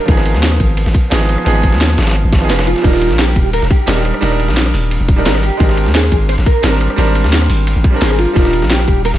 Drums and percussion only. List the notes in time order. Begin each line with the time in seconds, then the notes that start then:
0.08 kick, closed hi-hat, ride
0.17 cross-stick, snare
0.26 closed hi-hat, ride
0.34 snare
0.43 snare, closed hi-hat, ride
0.52 cross-stick
0.60 kick, closed hi-hat, ride
0.77 closed hi-hat, ride
0.86 snare
0.94 kick, closed hi-hat, ride
1.12 snare, closed hi-hat, ride
1.21 snare
1.29 cross-stick, closed hi-hat, ride
1.38 cross-stick
1.46 closed hi-hat, ride
1.55 cross-stick
1.63 kick, closed hi-hat, ride
1.72 snare
1.81 snare, closed hi-hat, ride
1.90 cross-stick
1.98 snare, closed hi-hat, ride
2.02 snare, ride
2.07 snare, ride
2.11 snare, closed hi-hat, ride
2.15 ride
2.33 kick, snare, closed hi-hat, ride
2.42 snare
2.50 snare, closed hi-hat, ride
2.59 cross-stick, snare, ride
2.67 closed hi-hat, ride
2.76 snare
2.84 kick, closed hi-hat, ride, crash
2.93 cross-stick, snare
3.02 closed hi-hat, ride
3.11 snare
3.19 snare, closed hi-hat, ride
3.28 cross-stick
3.36 kick, closed hi-hat, ride
3.53 closed hi-hat, ride
3.62 snare
3.71 kick, closed hi-hat, ride
3.88 snare, closed hi-hat, ride
3.97 snare
4.05 cross-stick, closed hi-hat, ride
4.14 cross-stick
4.22 closed hi-hat, ride
4.32 cross-stick
4.40 closed hi-hat, ride
4.48 snare
4.57 snare, closed hi-hat, ride
4.66 cross-stick
4.74 closed hi-hat, open hi-hat
4.91 closed hi-hat, ride
5.08 kick, closed hi-hat, ride
5.26 snare, closed hi-hat, ride
5.35 cross-stick, snare
5.43 closed hi-hat, ride
5.60 kick, closed hi-hat, ride
5.69 cross-stick, snare
5.77 closed hi-hat, ride
5.86 snare
5.95 snare, closed hi-hat, ride
6.04 cross-stick
6.12 kick, closed hi-hat, ride
6.29 closed hi-hat, ride
6.38 snare
6.46 kick, closed hi-hat, ride
6.64 snare, closed hi-hat, ride
6.73 snare
6.81 cross-stick, closed hi-hat, ride
6.90 cross-stick
6.98 closed hi-hat, ride
7.07 cross-stick
7.15 closed hi-hat, ride
7.24 snare
7.32 snare, closed hi-hat, ride
7.42 cross-stick
7.50 closed hi-hat, open hi-hat
7.67 closed hi-hat, ride
7.84 kick, closed hi-hat, ride
8.02 snare, closed hi-hat, ride
8.11 cross-stick, snare
8.19 closed hi-hat, ride
8.36 kick, closed hi-hat, ride
8.45 cross-stick, snare
8.53 closed hi-hat, ride
8.62 snare
8.70 snare, closed hi-hat, ride
8.79 cross-stick
8.88 kick, closed hi-hat, ride
9.05 closed hi-hat, ride
9.14 snare